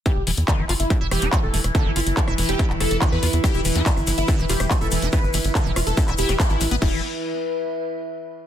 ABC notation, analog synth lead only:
X:1
M:4/4
L:1/16
Q:1/4=142
K:Em
V:1 name="Analog synth lead"
G2 z4 z E2 z G2 z A2 z | A2 z4 z G2 z A2 z B2 z | G2 z4 z E2 z G2 z A2 z | B2 z4 z A2 z G2 z E2 z |
E2 z12 z2 |]